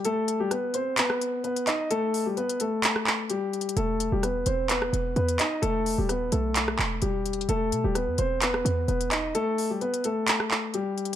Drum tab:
HH |x-----x-----x-----x-----x-----x-----x--x--x-----|x-----o-----x--x--x-----x-----------x-----x-x-x-|x-----x-----x-----x-----x-----x-----x--x--x-----|x-----o-----x-----x-----x-----------x-----x-x-x-|
CP |------------------------x-----------------x-----|------------------------x-----x-----------------|------------------------x-----------------x-----|------------------------x-----x-----------------|
SD |------------r--------------r--------------------|---------------------------r--------------------|------------r--------------r--------------------|------------r--------------r--------------------|

HH |x-----x-----x-----x-----x-----x-----x--x--x-----|x-----o-----x--x--x-----x-----------x-----x-x---|
CP |------------------------x-----------------x-----|------------------------x-----x-----------------|
SD |------------r--------------r--------------------|---------------------------r--------------------|